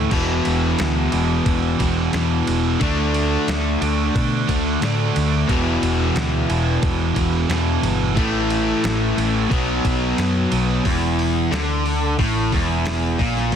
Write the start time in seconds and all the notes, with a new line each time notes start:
Already playing: E3 A3
0.11 E1 E2 B2 E3, kick, crash
0.45 E1, ride
0.79 D2, snare, ride
1.12 E1 E2 B2 E3, ride
1.46 E1, kick, ride
1.79 E1 E2 B2 E3, kick, ride
2.13 E2 B2 E3, snare, ride
2.47 E1, ride
2.81 D2 D3 A3 D4, kick, ride
3.14 ride
3.48 D2, snare, ride
3.81 D2 D3 A3 D4, ride
4.15 B2, kick, ride
4.48 D2 D3 A3 D4, kick, ride
4.81 A2 D3 A3 D4, snare, ride
5.16 D2, ride
5.48 E1 E2 B2 E3, kick, ride
5.82 E1, ride
6.16 D2, snare, ride
6.49 E1 E2 B2 E3, ride
6.83 E1, kick, ride
7.15 E1 E2 B2 E3, kick, ride
7.49 E2 B2 E3, snare, ride
7.82 G1, ride
8.16 A1 A2 E3 A3, kick, ride
8.50 ride
8.84 A1, snare, ride
9.17 A1 A2 E3 A3, ride
9.51 B1 B2 F#3 B3, kick, ride
9.85 B1, kick, ride
10.18 F#2, snare, ride
10.51 B1 B2 F#3 B3, ride
10.85 E1 E2, kick, open hi-hat
11.19 open hi-hat
11.52 D2 D3, snare, open hi-hat
11.86 open hi-hat
12.19 A1 A2, kick, open hi-hat
12.52 E1 E2, kick, open hi-hat
12.85 snare, open hi-hat
13.19 A#1 A#2, kick, open hi-hat
13.37 snare
13.52 E1 E2, kick, open hi-hat